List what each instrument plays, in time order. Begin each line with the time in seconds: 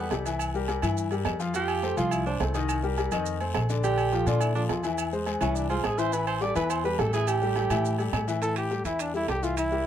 Already playing: tenor saxophone B3
0.11 upright bass C2, grand piano G3 G4 A4, low timbale, low agogo, short guiro, maracas
0.26 grand piano E3 E4 E5, low agogo, short guiro, maracas
0.39 low agogo, long guiro, claves, maracas
0.54 grand piano G3 G4 A#4, maracas
0.68 grand piano G3 G4 A#4, low timbale, low agogo, short guiro, maracas
0.82 upright bass G2, grand piano E3 E4 E5, low agogo, short guiro, claves, maracas
0.97 long guiro, maracas
1.11 grand piano G3 G4 A#4, low agogo, maracas
1.25 upright bass F2, low timbale, low agogo, short guiro, claves, maracas
1.40 grand piano F3 F4 F5, short guiro, maracas
1.54 grand piano F3 F4 F5, tenor saxophone G4, low agogo, long guiro, maracas
1.68 low agogo, claves, maracas
1.83 grand piano A3 A4 C5, low timbale, short guiro, maracas
1.97 upright bass C2, grand piano F3 F4 F5, tenor saxophone F4, low agogo, short guiro, maracas
2.11 tenor saxophone E4, low agogo, long guiro, claves, maracas
2.26 grand piano A3 A4 C5, tenor saxophone D4, maracas
2.40 upright bass C2, grand piano A3 A4 C5, low timbale, low agogo, short guiro, maracas
2.54 grand piano D#3 D#4 D#5, low agogo, short guiro, maracas
2.69 low agogo, long guiro, claves, maracas
2.83 grand piano G3 G4 A#4, maracas
2.97 grand piano G3 G4 A#4, low timbale, low agogo, short guiro, maracas
3.12 upright bass F2, grand piano D#3 D#4 D#5, low agogo, short guiro, claves, maracas
3.26 long guiro, maracas
3.41 grand piano A3 A4 C5, low agogo, maracas
3.55 upright bass A#1, low timbale, low agogo, short guiro, claves, maracas
3.69 grand piano D3 D4 D5, short guiro, maracas
3.84 grand piano D3 D4 D5, tenor saxophone G4, low agogo, long guiro, maracas
3.98 low agogo, claves, maracas
4.12 grand piano F3 F4 A4, low timbale, short guiro, maracas
4.26 upright bass A#2, grand piano D3 D4 D5, tenor saxophone F4, low agogo, short guiro, maracas
4.41 tenor saxophone E4, low agogo, long guiro, claves, maracas
4.55 grand piano F3 F4 A4, tenor saxophone D4, maracas
4.69 upright bass E2, grand piano F3 F4 A4, low timbale, low agogo, short guiro, maracas
4.83 grand piano E3 E4 E5, low agogo, short guiro, maracas
4.98 low agogo, long guiro, claves, maracas
5.13 grand piano G#3 G#4 C5, maracas
5.26 grand piano G#3 G#4 C5, low timbale, low agogo, short guiro, maracas
5.41 upright bass C2, grand piano E3 E4 E5, tenor saxophone C#4, low agogo, short guiro, claves, maracas
5.56 tenor saxophone D4, long guiro, maracas
5.70 grand piano G#3 G#4 C5, tenor saxophone F4, low agogo, maracas
5.84 upright bass A1, tenor saxophone G#4, low timbale, low agogo, short guiro, claves, maracas
5.98 grand piano E3 E4 E5, tenor saxophone C5, short guiro, maracas
6.13 grand piano E3 E4 E5, tenor saxophone B4, low agogo, long guiro, maracas
6.27 tenor saxophone C5, low agogo, claves, maracas
6.41 grand piano G3 G4 A4, tenor saxophone D5, low timbale, short guiro, maracas
6.55 upright bass E2, grand piano E3 E4 E5, tenor saxophone B4, low agogo, short guiro, maracas
6.70 tenor saxophone C5, low agogo, long guiro, claves, maracas
6.84 grand piano G3 G4 A4, tenor saxophone B4, maracas
6.99 upright bass A1, grand piano G3 G4 A4, tenor saxophone A4, low timbale, low agogo, short guiro, maracas
7.13 grand piano E3 E4 E5, tenor saxophone G#4, low agogo, short guiro, maracas
7.27 tenor saxophone G4, low agogo, long guiro, claves, maracas
7.42 grand piano G3 G4 A4, maracas
7.56 grand piano G3 G4 A4, low timbale, low agogo, short guiro, maracas
7.70 upright bass A2, grand piano E3 E4 E5, low agogo, short guiro, claves, maracas
7.85 long guiro, maracas
7.98 grand piano G3 G4 A4, low agogo, maracas
8.13 upright bass A2, low timbale, low agogo, short guiro, claves, maracas
8.28 grand piano E3 E4 E5, short guiro, maracas
8.42 grand piano E3 E4 E5, trumpet A4, high timbale, long guiro, maracas
8.56 trumpet G4, high timbale, claves, maracas
8.71 grand piano G3 G4 A4, low timbale, short guiro, maracas
8.84 upright bass E2, grand piano E3 E4 E5, trumpet E4, high timbale, short guiro, maracas
8.99 trumpet D4, high timbale, long guiro, claves, maracas
9.14 grand piano G3 G4 A4, trumpet E4, maracas
9.28 upright bass C2, grand piano G3 G4 A4, trumpet G4, high timbale, low timbale, short guiro, maracas
9.43 grand piano E3 E4 E5, trumpet F4, short guiro, maracas
9.57 trumpet E4, high timbale, long guiro, claves, maracas
9.71 grand piano G3 G4 A#4, maracas